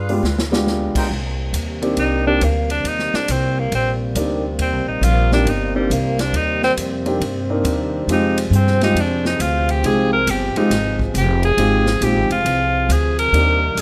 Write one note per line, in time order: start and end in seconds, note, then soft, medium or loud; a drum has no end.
0.00 0.19 G2 medium
0.00 0.68 D4 medium
0.00 0.68 F4 medium
0.00 0.67 G#4 medium
0.00 0.68 B4 medium
0.09 0.22 G#3 medium
0.09 0.22 B3 medium
0.09 0.22 D4 medium
0.09 0.22 F4 medium
0.09 0.23 G4 medium
0.09 open hi-hat soft
0.23 0.91 D2 medium
0.23 snare medium
0.39 snare medium
0.52 1.07 G#3 medium
0.52 1.07 B3 medium
0.52 1.08 D4 medium
0.52 1.08 F4 medium
0.52 1.08 G4 medium
0.52 snare medium
0.67 snare soft
0.94 1.05 D#4 medium
0.94 1.05 A#4 medium
0.94 1.05 C5 medium
0.94 1.05 G5 medium
0.94 muted upright bass stroke soft
0.94 kick medium
0.94 crash medium
1.09 1.52 C2 medium
1.09 13.29 C3 medium
1.09 8.05 G3 medium
1.09 8.05 A#3 medium
1.09 13.29 C4 medium
1.53 1.96 D#2 medium
1.53 hi-hat pedal medium
1.53 ride medium
1.82 2.23 A#3 medium
1.82 2.23 C4 medium
1.82 2.23 D4 medium
1.82 2.24 D#4 medium
1.82 2.24 G4 medium
1.82 ride soft
1.97 2.40 C2 medium
1.97 2.25 D#4 medium
1.97 ride medium
2.27 2.40 A#3 medium
2.27 2.40 C4 medium
2.27 2.45 D4 loud
2.27 2.40 D4 medium
2.27 2.40 D#4 medium
2.27 2.41 G4 medium
2.41 2.84 D2 medium
2.41 2.71 A#3 medium
2.41 hi-hat pedal medium
2.41 ride medium
2.70 2.89 D4 medium
2.70 ride soft
2.84 3.11 D#2 medium
2.84 3.17 D#4 medium
2.84 ride medium
2.99 snare soft
3.14 3.33 D4 loud
3.14 muted upright bass stroke soft
3.14 snare soft
3.28 3.71 C2 medium
3.28 3.61 C4 medium
3.28 hi-hat pedal medium
3.28 ride medium
3.59 3.73 A#3 medium
3.72 4.14 A#1 medium
3.72 3.91 C4 medium
3.72 ride medium
4.15 4.58 D2 medium
4.15 4.42 A#3 medium
4.15 4.42 C4 soft
4.15 4.42 D4 medium
4.15 4.42 D#4 medium
4.15 4.42 G4 medium
4.15 hi-hat pedal medium
4.15 ride medium
4.59 4.73 D#2 medium
4.59 4.87 C4 medium
4.59 ride medium
4.73 4.86 C2 medium
4.86 5.01 A#1 medium
4.86 5.06 D#4 medium
5.01 5.45 A#1 medium
5.01 5.32 F4 loud
5.01 hi-hat pedal medium
5.01 ride medium
5.32 5.46 A#3 medium
5.32 5.46 C4 medium
5.32 5.46 D4 medium
5.32 5.51 D4 medium
5.32 5.46 D#4 medium
5.32 5.46 G4 medium
5.32 snare soft
5.45 5.88 G1 loud
5.45 5.75 D#4 medium
5.45 ride medium
5.75 5.94 G3 medium
5.75 5.89 A#3 medium
5.75 5.89 C4 medium
5.75 5.89 D4 medium
5.75 5.89 D#4 soft
5.75 5.89 A#4 medium
5.90 6.32 C2 medium
5.90 6.22 A#3 medium
5.90 hi-hat pedal medium
5.90 ride medium
6.19 6.37 D4 medium
6.19 snare soft
6.19 ride medium
6.33 6.76 D#2 medium
6.33 6.63 D#4 loud
6.33 ride medium
6.63 6.73 C4 loud
6.63 snare soft
6.77 7.20 F2 medium
6.77 hi-hat pedal medium
6.77 ride medium
7.06 7.20 A#3 medium
7.06 7.20 C4 medium
7.06 7.20 D4 medium
7.06 7.20 D#4 medium
7.06 7.20 G4 medium
7.06 ride soft
7.20 7.63 G2 medium
7.20 ride medium
7.50 8.06 A#3 medium
7.50 8.06 C4 medium
7.50 8.06 D4 medium
7.50 8.06 D#4 medium
7.50 8.06 A#4 medium
7.64 8.07 D#2 medium
7.64 hi-hat pedal soft
7.64 ride medium
8.07 8.50 F2 medium
8.07 13.29 F3 medium
8.07 8.35 G#3 medium
8.07 8.35 C4 medium
8.07 8.35 D#4 medium
8.07 8.36 F4 medium
8.07 8.36 G4 medium
8.07 13.29 G#4 medium
8.07 ride medium
8.12 8.37 D#4 medium
8.38 8.56 G3 medium
8.38 ride medium
8.51 8.94 G2 medium
8.51 hi-hat pedal medium
8.55 8.83 C4 medium
8.67 snare soft
8.81 8.95 G#3 medium
8.81 8.95 C4 medium
8.81 8.96 D#4 medium
8.81 9.02 D#4 loud
8.81 8.96 F4 medium
8.81 8.96 G4 medium
8.81 snare soft
8.81 ride soft
8.95 9.38 F2 medium
8.95 ride medium
9.00 9.26 D4 medium
9.25 9.43 D#4 medium
9.25 snare soft
9.39 9.82 D2 loud
9.39 9.72 F4 medium
9.39 hi-hat pedal medium
9.39 ride medium
9.69 9.87 G4 loud
9.69 ride soft
9.83 10.26 C2 medium
9.83 10.10 G#3 medium
9.83 10.10 C4 medium
9.83 10.10 D#4 medium
9.83 10.10 F4 medium
9.83 10.10 G4 medium
9.83 10.12 G#4 medium
9.83 ride medium
10.13 10.32 A#4 loud
10.27 10.54 G1 medium
10.27 10.59 G4 medium
10.27 hi-hat pedal medium
10.27 ride medium
10.56 10.70 G#3 medium
10.56 10.70 C4 medium
10.56 10.70 D#4 medium
10.56 11.01 D#4 loud
10.56 10.70 F4 medium
10.56 10.71 G4 medium
10.56 muted upright bass stroke soft
10.56 ride soft
10.70 11.13 G#1 medium
10.70 snare soft
10.70 ride medium
10.99 kick medium
11.14 11.57 F1 medium
11.14 11.43 G4 medium
11.14 hi-hat pedal medium
11.14 ride medium
11.43 12.05 G#4 loud
11.43 ride medium
11.57 12.00 G#1 medium
11.57 11.84 G#3 medium
11.57 11.84 C4 medium
11.57 11.84 D#4 medium
11.57 11.84 F4 medium
11.57 11.84 G4 medium
11.57 ride medium
11.86 snare medium
12.01 12.16 A#1 medium
12.01 12.28 G#3 medium
12.01 12.28 C4 medium
12.01 12.28 D#4 medium
12.01 12.28 F4 medium
12.01 12.29 G4 medium
12.01 12.31 G4 medium
12.01 hi-hat pedal medium
12.01 ride medium
12.16 12.30 G#1 medium
12.30 12.44 F1 medium
12.30 12.93 F4 loud
12.30 ride medium
12.45 12.88 C2 loud
12.45 ride medium
12.89 13.32 D2 loud
12.89 13.18 G#4 medium
12.89 hi-hat pedal medium
12.89 ride medium
13.19 13.81 A#4 loud
13.19 ride medium
13.32 13.75 D#2 medium
13.32 13.81 C3 medium
13.32 13.81 G3 medium
13.32 13.81 A#3 medium
13.32 13.59 A#3 medium
13.32 13.59 C4 medium
13.32 13.60 D4 medium
13.32 13.81 D#4 medium
13.32 13.60 D#4 soft
13.32 13.60 G4 medium
13.32 ride medium
13.75 13.81 F2 medium
13.75 hi-hat pedal medium
13.75 ride medium